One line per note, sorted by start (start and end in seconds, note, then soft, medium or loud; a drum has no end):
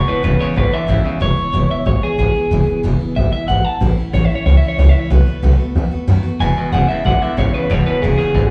0.07 0.23 E2 medium
0.07 0.23 B2 medium
0.07 0.23 E3 soft
0.07 0.23 G#3 medium
0.07 0.23 B3 soft
0.07 0.23 E4 medium
0.07 0.23 B4 medium
0.07 muted upright bass stroke medium
0.23 0.38 E1 medium
0.23 0.40 E2 medium
0.23 0.39 E2 medium
0.23 0.40 B2 medium
0.23 0.39 C#3 medium
0.23 0.40 E3 medium
0.23 0.40 G#3 medium
0.23 0.39 B3 loud
0.23 0.37 E4 medium
0.23 0.41 B4 medium
0.39 0.55 E2 medium
0.39 0.55 C#3 medium
0.39 0.53 E3 soft
0.39 0.54 G#3 medium
0.39 0.55 B3 medium
0.39 0.56 E4 medium
0.39 0.57 C#5 medium
0.39 muted upright bass stroke medium
0.54 0.71 G#1 loud
0.54 0.71 E2 medium
0.54 0.71 D3 loud
0.54 0.72 E3 medium
0.54 0.72 G#3 medium
0.54 0.71 B3 medium
0.54 0.70 E4 medium
0.54 0.74 B4 medium
0.71 0.87 E2 medium
0.71 0.88 D3 medium
0.71 0.87 E3 medium
0.71 0.87 G#3 soft
0.71 0.88 B3 soft
0.71 0.88 E4 medium
0.71 1.03 E5 medium
0.71 muted upright bass stroke medium
0.87 1.03 G#1 medium
0.87 1.04 E2 medium
0.87 1.03 E2 medium
0.87 1.05 B2 medium
0.87 1.04 C#3 loud
0.87 1.05 E3 medium
0.87 1.04 G#3 medium
0.87 1.03 B3 medium
0.87 1.02 E4 medium
1.04 1.20 E2 medium
1.04 1.20 C#3 medium
1.04 1.19 E3 soft
1.04 1.20 G#3 soft
1.04 1.21 B3 soft
1.04 1.20 E4 medium
1.04 muted upright bass stroke medium
1.20 1.35 E1 loud
1.20 1.37 E2 medium
1.20 1.37 B2 medium
1.20 1.37 E3 medium
1.20 1.37 G#3 medium
1.20 1.36 B3 medium
1.20 1.35 E4 medium
1.20 1.69 C#5 loud
1.36 1.52 E3 soft
1.36 1.53 G#3 medium
1.36 1.53 B3 soft
1.36 1.53 E4 medium
1.36 muted upright bass stroke medium
1.52 1.68 E1 medium
1.52 1.69 E2 medium
1.52 1.70 B2 medium
1.52 1.70 E3 medium
1.52 1.69 G#3 medium
1.52 1.69 B3 medium
1.52 1.67 E4 medium
1.69 1.84 E3 soft
1.69 1.85 G#3 soft
1.69 1.85 B3 medium
1.69 1.86 E4 medium
1.69 1.86 E5 medium
1.69 muted upright bass stroke medium
1.85 2.00 G#1 loud
1.85 2.02 E3 medium
1.85 2.02 G#3 medium
1.85 2.02 B3 medium
1.85 2.00 E4 medium
1.85 2.02 C#5 medium
2.01 2.18 E3 soft
2.01 2.18 G#3 soft
2.01 2.18 B3 medium
2.01 2.18 E4 medium
2.01 2.18 G#4 medium
2.01 muted upright bass stroke medium
2.18 2.33 G#1 medium
2.18 2.35 E2 medium
2.18 2.35 B2 medium
2.18 2.35 E3 medium
2.18 2.35 G#3 medium
2.18 2.34 B3 medium
2.18 2.33 E4 medium
2.18 2.82 G#4 medium
2.34 2.50 E3 soft
2.34 2.51 G#3 soft
2.34 2.51 B3 medium
2.34 2.51 E4 medium
2.34 muted upright bass stroke medium
2.51 2.65 E1 medium
2.51 2.68 E2 medium
2.51 2.68 B2 medium
2.51 2.68 E3 medium
2.51 2.68 G#3 medium
2.51 2.68 B3 medium
2.51 2.66 E4 medium
2.67 2.83 E3 medium
2.67 2.83 G#3 medium
2.67 2.84 B3 medium
2.67 2.84 E4 medium
2.67 muted upright bass stroke medium
2.83 2.98 E1 medium
2.83 3.00 E2 medium
2.83 3.00 B2 medium
2.83 3.00 E3 loud
2.83 3.00 G#3 medium
2.83 2.99 B3 loud
2.83 2.98 E4 loud
2.99 3.14 E3 medium
2.99 3.15 G#3 medium
2.99 3.16 B3 medium
2.99 3.16 E4 medium
2.99 muted upright bass stroke medium
3.15 3.31 G#1 loud
3.15 3.32 E3 medium
3.15 3.32 G#3 medium
3.15 3.31 B3 medium
3.15 3.30 E4 medium
3.15 3.31 E5 medium
3.31 3.47 E3 soft
3.31 3.48 G#3 medium
3.31 3.48 B3 medium
3.31 3.48 E4 medium
3.31 3.48 E5 medium
3.31 muted upright bass stroke medium
3.48 3.63 G#1 medium
3.48 3.64 E2 medium
3.48 3.65 B2 medium
3.48 3.65 E3 medium
3.48 3.65 G#3 medium
3.48 3.64 B3 medium
3.48 3.63 E4 medium
3.48 3.65 F#5 medium
3.64 3.80 E3 soft
3.64 3.81 G#3 soft
3.64 3.81 B3 soft
3.64 3.81 E4 medium
3.64 3.81 A5 medium
3.64 muted upright bass stroke medium
3.80 3.95 A1 loud
3.80 3.97 A2 medium
3.80 3.97 E3 medium
3.80 3.98 A3 medium
3.80 3.98 C#4 medium
3.80 3.96 E4 loud
3.97 4.13 A3 medium
3.97 4.14 C#4 medium
3.97 4.14 E4 medium
3.97 muted upright bass stroke medium
4.13 4.28 A1 medium
4.13 4.30 A2 medium
4.13 4.30 E3 medium
4.13 4.30 A3 medium
4.13 4.30 C#4 medium
4.13 4.29 E4 medium
4.13 4.25 C#5 loud
4.25 4.35 E5 medium
4.30 4.46 A3 soft
4.30 4.47 C#4 medium
4.30 4.46 E4 medium
4.30 muted upright bass stroke medium
4.35 4.45 C#5 medium
4.46 4.60 C#2 loud
4.46 4.62 E3 medium
4.46 4.63 A3 medium
4.46 4.62 C#4 medium
4.46 4.61 E4 medium
4.46 4.57 C#5 loud
4.57 4.68 E5 loud
4.61 4.78 A3 soft
4.61 4.79 C#4 soft
4.61 4.78 E4 medium
4.61 muted upright bass stroke medium
4.68 4.78 C#5 medium
4.78 4.92 C#2 loud
4.78 4.95 A2 medium
4.78 4.95 E3 medium
4.78 4.95 A3 medium
4.78 4.94 C#4 medium
4.78 4.93 E4 medium
4.78 4.89 C#5 medium
4.89 4.99 E5 medium
4.94 5.10 A3 soft
4.94 5.11 C#4 soft
4.94 5.11 E4 medium
4.99 5.10 C#5 medium
5.10 5.25 B1 loud
5.10 5.27 B2 medium
5.10 5.27 D#3 medium
5.10 5.27 A3 medium
5.10 5.26 B3 medium
5.10 5.25 F#4 medium
5.10 6.05 B4 loud
5.26 5.42 A3 soft
5.26 5.43 B3 medium
5.26 5.43 F#4 medium
5.26 muted upright bass stroke medium
5.43 5.57 B1 medium
5.43 5.59 B2 medium
5.43 5.59 D#3 medium
5.43 5.60 A3 medium
5.43 5.59 B3 medium
5.43 5.58 F#4 medium
5.59 5.75 A3 medium
5.59 5.76 B3 medium
5.59 5.75 F#4 medium
5.59 muted upright bass stroke medium
5.75 5.90 D#2 loud
5.75 5.92 D#3 medium
5.75 5.92 A3 medium
5.75 5.91 B3 medium
5.75 5.90 F#4 medium
5.91 6.07 A3 soft
5.91 6.07 B3 medium
5.91 6.08 F#4 medium
5.91 muted upright bass stroke medium
6.07 6.22 F#2 medium
6.07 6.24 B2 medium
6.07 6.24 D#3 medium
6.07 6.24 A3 medium
6.07 6.23 B3 loud
6.07 6.22 F#4 loud
6.23 6.41 A3 soft
6.23 6.41 B3 medium
6.23 6.40 F#4 medium
6.23 muted upright bass stroke medium
6.40 6.54 E1 medium
6.40 6.57 E2 medium
6.40 6.55 E2 medium
6.40 6.57 B2 medium
6.40 6.55 B2 medium
6.40 6.57 E3 medium
6.40 6.56 G#3 medium
6.40 6.56 B3 loud
6.40 6.55 E4 medium
6.40 6.72 G#5 loud
6.56 6.71 E2 medium
6.56 6.72 B2 medium
6.56 6.72 E3 soft
6.56 6.73 G#3 soft
6.56 6.73 B3 medium
6.56 6.73 E4 medium
6.56 muted upright bass stroke medium
6.72 6.87 E1 loud
6.72 6.89 E2 medium
6.72 6.88 E2 medium
6.72 6.89 B2 medium
6.72 6.88 C#3 medium
6.72 6.89 E3 medium
6.72 6.89 G#3 medium
6.72 6.88 B3 medium
6.72 6.87 E4 medium
6.72 6.88 F#5 medium
6.88 7.04 E2 medium
6.88 7.04 C#3 medium
6.88 7.03 E3 soft
6.88 7.04 G#3 medium
6.88 7.05 B3 medium
6.88 7.05 E4 medium
6.88 7.04 E5 medium
6.88 muted upright bass stroke medium
7.04 7.19 G#1 loud
7.04 7.20 E2 medium
7.04 7.20 D3 loud
7.04 7.21 E3 medium
7.04 7.22 G#3 medium
7.04 7.21 B3 medium
7.04 7.20 E4 medium
7.04 7.22 F#5 medium
7.21 7.36 E2 medium
7.21 7.36 D3 medium
7.21 7.37 E3 soft
7.21 7.37 G#3 soft
7.21 7.38 B3 soft
7.21 7.38 E4 medium
7.21 7.38 E5 medium
7.21 muted upright bass stroke medium
7.37 7.51 G#1 medium
7.37 7.53 E2 medium
7.37 7.52 E2 medium
7.37 7.54 B2 medium
7.37 7.52 C#3 medium
7.37 7.54 E3 medium
7.37 7.54 G#3 medium
7.37 7.53 B3 medium
7.37 7.52 E4 medium
7.37 7.54 C#5 loud
7.53 7.68 E2 medium
7.53 7.68 C#3 medium
7.53 7.70 E3 soft
7.53 7.69 G#3 soft
7.53 7.70 B3 soft
7.53 7.70 E4 medium
7.53 7.71 B4 medium
7.53 muted upright bass stroke medium
7.70 7.84 E1 medium
7.70 7.86 E2 medium
7.70 7.84 E2 medium
7.70 7.86 B2 medium
7.70 7.85 B2 loud
7.70 7.87 E3 medium
7.70 7.86 G#3 loud
7.70 7.85 B3 medium
7.70 7.84 E4 medium
7.70 7.86 C#5 loud
7.86 8.01 E2 medium
7.86 8.01 B2 medium
7.86 8.03 E3 soft
7.86 8.03 G#3 soft
7.86 8.03 B3 medium
7.86 8.02 E4 medium
7.86 8.02 B4 medium
7.86 muted upright bass stroke medium
8.02 8.17 E1 medium
8.02 8.17 E2 medium
8.02 8.19 E2 medium
8.02 8.19 B2 medium
8.02 8.17 C#3 loud
8.02 8.19 E3 medium
8.02 8.19 G#3 medium
8.02 8.18 B3 medium
8.02 8.17 E4 medium
8.02 8.16 G#4 medium
8.18 8.33 E2 medium
8.18 8.33 C#3 medium
8.18 8.33 E3 medium
8.18 8.34 G#3 medium
8.18 8.35 B3 medium
8.18 8.35 E4 medium
8.18 8.50 G#4 medium
8.18 muted upright bass stroke medium
8.34 8.49 G#1 medium
8.34 8.49 E2 medium
8.34 8.49 D3 loud
8.34 8.50 E3 medium
8.34 8.50 G#3 medium
8.34 8.50 B3 medium
8.34 8.49 E4 medium